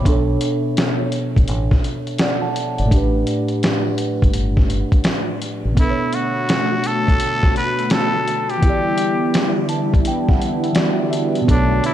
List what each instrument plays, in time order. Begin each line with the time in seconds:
Already playing: synth keys C#5 E5
0.00 synth keys B2 B3
0.05 fingered electric bass B1, synth keys D4 A4, kick, closed hi-hat
0.12 synth keys C#5
0.41 closed hi-hat
0.77 snare, closed hi-hat
1.12 closed hi-hat
1.37 fingered electric bass A1, kick, closed hi-hat
1.48 fingered electric bass A1, closed hi-hat
1.71 kick, snare
1.84 closed hi-hat
2.07 closed hi-hat
2.19 synth keys D5 F#5, snare, closed hi-hat
2.42 synth keys F#5 A5
2.56 closed hi-hat
2.78 fingered electric bass G1, synth keys D5 F#5, closed hi-hat
2.85 synth keys A2 A3
2.91 fingered electric bass A1, synth keys D4 G4, kick, closed hi-hat
2.97 synth keys B4
3.27 closed hi-hat
3.49 closed hi-hat
3.63 snare, closed hi-hat
3.98 closed hi-hat
4.22 fingered electric bass G1, kick, closed hi-hat
4.34 closed hi-hat
4.57 kick, snare
4.70 closed hi-hat
4.92 kick, closed hi-hat
5.04 snare, closed hi-hat
5.42 closed hi-hat
5.65 fingered electric bass A1
5.72 synth keys B2 B3, analog synth pad B3
5.76 analog synth pad D3 A3 F#4, synth keys D4, muted trumpet E4, kick, closed hi-hat
5.81 synth keys A4 B4
5.90 synth keys C#5
6.13 muted trumpet F#4, closed hi-hat
6.49 snare, closed hi-hat
6.84 muted trumpet A4, closed hi-hat
7.08 kick, closed hi-hat
7.20 closed hi-hat
7.43 kick, snare
7.56 muted trumpet B4, closed hi-hat
7.79 closed hi-hat
7.90 muted trumpet A4, snare, closed hi-hat
8.28 closed hi-hat
8.50 muted trumpet G4, closed hi-hat
8.58 synth keys E3 B3
8.62 analog synth pad G3 E4, synth keys E4 G4, kick, closed hi-hat
8.69 synth keys D5
8.98 closed hi-hat
9.34 snare, closed hi-hat
9.69 synth keys A5, closed hi-hat
9.94 kick, closed hi-hat
10.05 synth keys G5, closed hi-hat
10.28 synth keys F#5, kick, snare
10.42 closed hi-hat
10.64 synth keys E5, closed hi-hat
10.73 synth keys E3 B3 F#4 D5, snare, closed hi-hat
10.78 synth keys G4 D5
11.00 synth keys D5
11.11 synth keys E5, closed hi-hat
11.35 closed hi-hat
11.41 synth keys B2 B3
11.47 fingered electric bass B1, analog synth pad A3 F#4, synth keys D4 A4, muted trumpet D4, kick, closed hi-hat
11.53 synth keys C#5
11.84 muted trumpet E4, closed hi-hat